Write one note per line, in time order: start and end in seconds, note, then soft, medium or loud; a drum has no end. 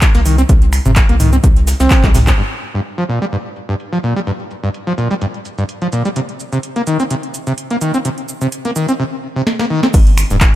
0.01 kick loud
0.01 snare loud
0.01 clap loud
0.01 closed hi-hat medium
0.01 shaker soft
0.01 shaker medium
0.14 0.44 C2 loud
0.14 0.21 A#3 medium
0.14 snare loud
0.14 closed hi-hat soft
0.14 shaker medium
0.25 0.36 D#3 medium
0.25 open hi-hat loud
0.25 shaker medium
0.38 0.42 C4 loud
0.38 closed hi-hat soft
0.38 shaker soft
0.49 0.79 C2 loud
0.49 0.53 C3 medium
0.49 kick loud
0.49 closed hi-hat loud
0.49 shaker soft
0.49 shaker medium
0.62 closed hi-hat soft
0.72 finger snap medium
0.72 open hi-hat loud
0.72 shaker medium
0.86 1.01 G1 loud
0.86 0.92 C3 medium
0.86 closed hi-hat soft
0.86 mid tom medium
0.86 shaker soft
0.96 kick loud
0.96 snare loud
0.96 clap loud
0.96 closed hi-hat loud
0.96 shaker soft
0.96 shaker medium
1.09 1.38 C2 loud
1.09 1.15 A#3 medium
1.09 closed hi-hat soft
1.20 1.30 D#3 medium
1.20 mid tom medium
1.20 open hi-hat loud
1.20 shaker medium
1.33 1.36 C4 loud
1.33 closed hi-hat soft
1.33 shaker soft
1.44 1.73 C2 medium
1.44 1.48 C3 medium
1.44 kick loud
1.44 closed hi-hat loud
1.44 shaker soft
1.44 shaker medium
1.56 closed hi-hat soft
1.67 snare loud
1.67 open hi-hat loud
1.67 shaker medium
1.80 1.87 C2 medium
1.80 2.05 C4 medium
1.80 snare loud
1.80 closed hi-hat soft
1.80 shaker medium
1.80 shaker soft
1.90 kick loud
1.90 snare loud
1.90 clap loud
1.90 open hi-hat medium
1.90 shaker medium
1.90 shaker soft
2.03 2.33 C2 loud
2.03 2.10 G3 medium
2.03 kick medium
2.03 snare loud
2.03 clap medium
2.03 closed hi-hat soft
2.03 shaker medium
2.14 2.19 C3 medium
2.14 snare loud
2.14 mid tom medium
2.14 open hi-hat loud
2.14 shaker medium
2.27 2.31 C4 medium
2.27 kick medium
2.27 snare loud
2.27 clap loud
2.27 closed hi-hat soft
2.27 shaker soft
2.27 shaker medium
2.38 2.42 G2 medium
2.38 closed hi-hat medium
2.38 shaker soft
2.51 closed hi-hat soft
2.62 shaker medium
2.74 2.80 G2 medium
2.85 closed hi-hat medium
2.85 shaker soft
2.98 3.04 F3 medium
3.09 3.19 A#2 medium
3.09 closed hi-hat medium
3.09 shaker medium
3.22 3.25 G3 medium
3.33 3.37 G2 medium
3.33 closed hi-hat medium
3.45 closed hi-hat soft
3.56 closed hi-hat medium
3.56 shaker medium
3.69 3.75 G2 medium
3.69 closed hi-hat soft
3.69 shaker soft
3.80 closed hi-hat medium
3.80 shaker soft
3.93 3.99 F3 medium
4.03 4.14 A#2 medium
4.03 closed hi-hat medium
4.03 shaker medium
4.16 4.20 G3 medium
4.16 closed hi-hat soft
4.16 shaker soft
4.27 4.31 G2 medium
4.27 closed hi-hat medium
4.27 shaker soft
4.40 closed hi-hat soft
4.51 closed hi-hat soft
4.51 shaker medium
4.63 4.69 G2 medium
4.63 closed hi-hat soft
4.63 shaker soft
4.74 closed hi-hat medium
4.74 shaker soft
4.87 4.93 F3 medium
4.87 closed hi-hat soft
4.98 5.08 A#2 medium
4.98 closed hi-hat medium
4.98 shaker medium
5.11 5.14 G3 loud
5.11 closed hi-hat soft
5.11 shaker soft
5.21 5.26 G2 medium
5.21 closed hi-hat medium
5.21 shaker soft
5.34 closed hi-hat soft
5.45 closed hi-hat medium
5.45 shaker medium
5.58 5.64 G2 medium
5.58 closed hi-hat soft
5.58 shaker soft
5.69 closed hi-hat medium
5.69 shaker soft
5.82 5.88 F3 medium
5.82 closed hi-hat soft
5.92 6.03 A#2 medium
5.92 closed hi-hat medium
5.92 shaker medium
6.05 6.09 G3 loud
6.05 closed hi-hat soft
6.05 shaker soft
6.16 6.20 C3 medium
6.16 closed hi-hat medium
6.16 shaker soft
6.29 closed hi-hat soft
6.40 closed hi-hat soft
6.40 shaker medium
6.53 6.58 C3 medium
6.53 closed hi-hat soft
6.53 shaker soft
6.63 closed hi-hat medium
6.63 shaker soft
6.76 6.82 A#3 medium
6.76 closed hi-hat soft
6.87 6.97 D#3 medium
6.87 closed hi-hat medium
6.87 shaker medium
7.00 7.03 C4 loud
7.00 closed hi-hat soft
7.00 shaker soft
7.11 7.15 C3 medium
7.11 closed hi-hat medium
7.11 shaker soft
7.23 closed hi-hat soft
7.34 closed hi-hat medium
7.34 shaker medium
7.47 7.53 C3 medium
7.47 closed hi-hat soft
7.47 shaker soft
7.58 closed hi-hat medium
7.58 shaker soft
7.70 7.77 A#3 medium
7.70 closed hi-hat soft
7.81 7.92 D#3 medium
7.81 closed hi-hat medium
7.81 shaker medium
7.94 7.98 C4 loud
7.94 closed hi-hat soft
7.94 shaker soft
8.05 8.09 C3 medium
8.05 closed hi-hat medium
8.05 shaker soft
8.18 closed hi-hat soft
8.29 closed hi-hat soft
8.29 shaker medium
8.41 8.47 C3 medium
8.41 closed hi-hat soft
8.41 shaker soft
8.52 closed hi-hat medium
8.52 shaker soft
8.65 8.71 A#3 medium
8.65 closed hi-hat soft
8.76 8.86 D#3 medium
8.76 closed hi-hat medium
8.76 shaker medium
8.88 8.92 C4 loud
8.88 closed hi-hat soft
8.88 shaker soft
9.00 9.04 C3 medium
9.36 9.42 C3 medium
9.47 snare medium
9.59 9.66 A#3 medium
9.59 snare medium
9.70 9.81 D#3 medium
9.83 9.87 C4 loud
9.83 snare medium
9.94 10.24 G1 loud
9.94 9.98 G2 medium
9.94 kick loud
9.94 closed hi-hat loud
9.94 crash loud
9.94 shaker medium
9.94 shaker soft
10.07 closed hi-hat soft
10.18 finger snap medium
10.18 open hi-hat loud
10.18 shaker medium
10.30 10.46 D1 loud
10.30 10.36 G2 medium
10.30 closed hi-hat soft
10.30 shaker soft
10.41 finger snap medium
10.41 kick loud
10.41 snare loud
10.41 clap loud
10.41 closed hi-hat loud
10.41 shaker soft
10.41 shaker medium